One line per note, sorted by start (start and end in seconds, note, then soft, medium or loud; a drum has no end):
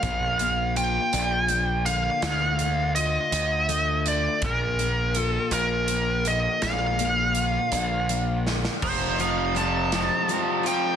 0.00 0.97 A#1 loud
0.00 1.87 A#2 medium
0.00 1.86 F3 medium
0.00 0.76 F4 medium
0.00 0.77 F5 medium
0.00 kick loud
0.00 closed hi-hat medium
0.39 1.49 A#3 medium
0.39 closed hi-hat medium
0.76 2.96 F4 medium
0.76 1.90 G5 medium
0.76 closed hi-hat medium
1.13 2.08 A#1 loud
1.13 4.63 D4 medium
1.13 closed hi-hat medium
1.49 2.23 A#3 medium
1.49 closed hi-hat medium
1.85 2.21 D3 medium
1.85 2.95 F5 medium
1.85 closed hi-hat medium
2.22 3.17 D2 loud
2.22 4.05 D3 medium
2.22 snare loud
2.22 closed hi-hat medium
2.59 3.67 A3 medium
2.59 closed hi-hat medium
2.95 5.16 F4 medium
2.95 4.08 D#5 medium
2.95 closed hi-hat medium
3.32 4.27 D2 medium
3.32 closed hi-hat loud
3.69 4.43 A3 medium
3.69 closed hi-hat medium
4.06 4.43 D3 medium
4.06 4.45 D5 medium
4.06 closed hi-hat medium
4.42 5.37 A#1 medium
4.42 6.27 A#2 medium
4.42 5.19 A#4 loud
4.42 kick loud
4.42 closed hi-hat medium
4.79 5.88 A#3 medium
4.79 closed hi-hat medium
5.15 7.00 F4 medium
5.15 closed hi-hat medium
5.19 5.52 A4 loud
5.51 6.46 A#1 loud
5.51 6.29 A#4 medium
5.51 closed hi-hat medium
5.88 6.99 A#3 medium
5.88 closed hi-hat medium
6.25 8.09 D3 medium
6.25 6.61 D#5 medium
6.25 closed hi-hat medium
6.62 7.57 A#1 medium
6.62 8.46 A#2 medium
6.62 8.42 F5 medium
6.62 snare loud
6.62 closed hi-hat medium
6.99 8.09 A#3 medium
6.99 closed hi-hat medium
7.35 8.83 F4 medium
7.35 closed hi-hat medium
7.72 8.67 A#1 loud
7.72 8.83 D4 medium
7.72 closed hi-hat medium
8.09 8.83 A#3 medium
8.09 closed hi-hat medium
8.47 8.82 D3 medium
8.47 snare medium
8.65 snare medium
8.82 10.08 F1 loud
8.82 9.19 F2 medium
8.82 9.18 C3 medium
8.82 9.17 F3 medium
8.82 9.19 F3 medium
8.82 9.21 C5 loud
8.82 kick loud
8.82 crash loud
9.18 9.56 F2 medium
9.18 9.56 C3 medium
9.18 9.91 F3 medium
9.18 9.58 F3 medium
9.18 9.58 F5 medium
9.18 closed hi-hat medium
9.55 9.91 F2 medium
9.55 9.91 C3 medium
9.55 9.91 F3 loud
9.55 10.28 G3 medium
9.55 10.67 A5 medium
9.55 closed hi-hat medium
9.92 10.28 F2 medium
9.92 10.29 C3 medium
9.92 10.96 F3 medium
9.92 10.29 F3 medium
9.92 snare loud
9.92 closed hi-hat medium
10.28 10.64 F2 medium
10.28 10.64 C3 medium
10.28 10.65 F3 medium
10.28 10.96 G3 medium
10.28 closed hi-hat medium
10.63 10.96 F2 medium
10.63 10.96 C3 medium
10.63 10.96 F3 loud
10.63 10.96 F4 medium
10.63 10.96 G5 loud
10.63 closed hi-hat medium